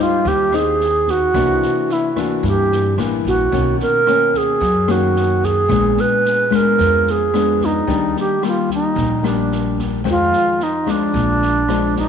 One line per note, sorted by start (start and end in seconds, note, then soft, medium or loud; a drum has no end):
0.00 0.23 G#2 soft
0.00 0.48 G3 medium
0.00 0.48 C4 medium
0.00 0.49 D#4 medium
0.00 0.29 F4 medium
0.25 1.30 D#2 loud
0.25 1.32 D#3 medium
0.25 0.57 G4 medium
0.25 kick medium
0.25 snare soft
0.53 1.30 C4 medium
0.53 1.30 D#4 medium
0.53 1.12 G#4 loud
0.53 cross-stick soft
0.53 snare soft
0.80 snare soft
1.07 1.94 F#4 loud
1.07 kick soft
1.07 snare soft
1.34 1.59 C2 medium
1.34 2.40 C3 medium
1.34 2.11 E3 soft
1.34 2.12 A#3 medium
1.34 2.12 D4 medium
1.34 kick medium
1.34 cross-stick medium
1.34 snare soft
1.62 snare soft
1.89 2.21 E4 medium
1.89 snare soft
2.16 2.93 E3 medium
2.16 2.93 A#3 medium
2.16 2.94 D4 medium
2.16 2.45 F#4 medium
2.16 kick soft
2.16 cross-stick soft
2.16 snare soft
2.43 3.49 G2 soft
2.43 2.94 G2 medium
2.43 kick medium
2.43 snare soft
2.48 2.96 G4 medium
2.72 snare soft
2.97 3.22 A1 medium
2.97 3.50 E3 medium
2.97 3.50 A#3 medium
2.97 3.50 D4 medium
2.97 cross-stick medium
2.97 snare soft
3.25 3.49 A#1 medium
3.25 3.77 F#4 medium
3.25 kick soft
3.25 snare soft
3.52 3.77 B1 medium
3.52 4.58 B2 soft
3.52 4.02 D#3 medium
3.52 4.02 A#3 soft
3.52 4.02 C#4 medium
3.52 kick soft
3.52 snare soft
3.80 4.39 A#4 loud
3.80 snare soft
4.07 4.61 D#3 medium
4.07 4.61 A#3 medium
4.07 4.61 C#4 medium
4.07 cross-stick medium
4.07 snare soft
4.34 4.93 G#4 medium
4.34 kick soft
4.34 snare soft
4.60 5.67 F#2 medium
4.60 5.66 F#2 loud
4.60 kick medium
4.60 snare soft
4.87 5.65 D#3 medium
4.87 5.65 A#3 medium
4.87 5.65 C#4 medium
4.87 5.46 F#4 medium
4.87 cross-stick medium
4.87 snare soft
5.16 snare soft
5.43 6.02 G#4 loud
5.43 kick soft
5.43 snare soft
5.68 5.95 A#1 loud
5.68 6.75 A#2 medium
5.68 6.46 G#3 medium
5.68 6.46 B3 medium
5.68 6.47 D4 medium
5.68 kick medium
5.68 cross-stick medium
5.68 snare soft
5.97 6.57 B4 loud
5.97 snare soft
6.25 snare soft
6.50 7.28 G#3 medium
6.50 7.29 B3 medium
6.50 7.28 D4 medium
6.50 kick soft
6.50 cross-stick medium
6.50 snare soft
6.56 7.12 A#4 loud
6.79 7.84 F2 medium
6.79 7.85 F3 medium
6.79 kick medium
6.79 snare soft
7.07 7.67 G#4 medium
7.07 snare soft
7.34 7.86 G#3 medium
7.34 7.86 B3 medium
7.34 7.86 D4 medium
7.34 cross-stick medium
7.34 snare soft
7.61 kick soft
7.61 snare soft
7.65 8.17 D#4 medium
7.87 8.13 D#2 loud
7.87 8.93 D#3 soft
7.87 8.37 G3 medium
7.87 8.37 A#3 medium
7.87 8.38 D4 medium
7.87 kick medium
7.87 snare soft
8.16 8.43 G4 medium
8.16 snare soft
8.42 9.19 G3 medium
8.42 9.19 A#3 medium
8.42 cross-stick medium
8.42 snare soft
8.48 8.70 F4 medium
8.70 kick soft
8.70 snare soft
8.74 9.29 D#4 medium
8.96 10.01 A#1 medium
8.96 10.02 A#2 medium
8.96 kick medium
8.96 snare soft
9.23 10.00 G3 medium
9.23 10.01 A#3 medium
9.23 10.01 D4 medium
9.23 cross-stick medium
9.23 snare soft
9.28 9.80 D4 medium
9.52 snare soft
9.78 kick soft
9.78 snare soft
10.04 11.11 F2 medium
10.04 10.30 F2 medium
10.04 10.59 D#3 soft
10.04 10.59 G#3 medium
10.04 10.59 C4 medium
10.04 kick medium
10.04 cross-stick medium
10.04 snare soft
10.10 10.65 F4 loud
10.33 snare soft
10.60 10.92 D#4 medium
10.60 snare soft
10.86 11.63 F3 medium
10.86 11.64 G#3 medium
10.86 11.64 D4 medium
10.86 kick soft
10.86 cross-stick medium
10.86 snare soft
10.91 11.97 D4 medium
11.14 12.09 A#1 medium
11.14 12.09 A#2 medium
11.14 kick medium
11.14 snare soft
11.42 snare soft
11.68 12.09 F3 medium
11.68 12.09 G#3 soft
11.68 12.09 D4 medium
11.68 cross-stick medium
11.68 snare soft
11.96 12.09 D#4 medium
11.96 kick soft
11.96 snare soft